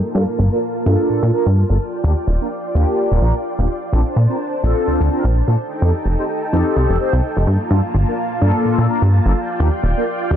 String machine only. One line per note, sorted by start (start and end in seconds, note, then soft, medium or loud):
0.00 1.78 A#3 medium
0.00 3.89 F4 medium
0.00 1.79 A5 medium
1.80 3.91 D5 medium
1.80 3.91 G5 medium
3.93 5.57 D4 medium
3.93 5.56 C5 medium
3.93 5.57 A5 medium
5.58 7.45 D#4 medium
5.58 7.45 A4 medium
5.58 7.45 G5 medium
7.47 9.34 A#3 medium
7.47 9.34 F4 medium
7.47 9.34 A5 medium
9.36 10.37 F4 medium
9.36 10.37 D5 medium
9.36 10.37 G5 medium